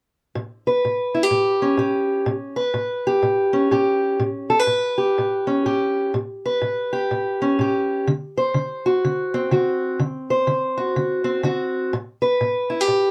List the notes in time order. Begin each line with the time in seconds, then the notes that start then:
0.35 A2
0.67 B4
0.85 A2
1.15 E4
1.23 G4
1.31 A2
1.62 C#4
1.77 A2 G4
2.26 A2
2.56 B4
2.74 A2
3.07 G4
3.23 A2
3.53 C#4
3.71 A2 G4
4.20 A2
4.50 A4
4.59 B4
4.67 A2
4.98 G4
5.18 A2
5.47 C#4
5.66 A2 G4
6.14 A2
6.46 B4
6.62 A2
6.93 G4
7.11 A2
7.42 C#4
7.59 A2 G4
8.07 D3
8.38 C5
8.54 D3
8.86 F#4
9.05 D3
9.34 C4
9.51 D3 F#4
9.99 D3
10.30 C5
10.47 D3
10.78 F#4
10.96 D3
11.24 C4
11.43 D3 F#4
11.93 A2
12.22 B4
12.41 A2
12.70 E4
12.81 G4
12.88 A2